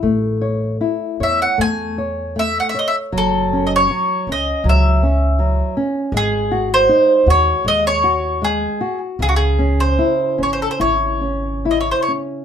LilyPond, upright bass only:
\new Staff \with { instrumentName = "Upright bass" } { \clef bass \time 4/4 \key cis \minor \tempo 4 = 78 a,,4. e,8 e,2 | fis,,4. cis,8 cis,2 | gis,,4. dis,8 dis,2 | cis,4. gis,,8 gis,,2 | }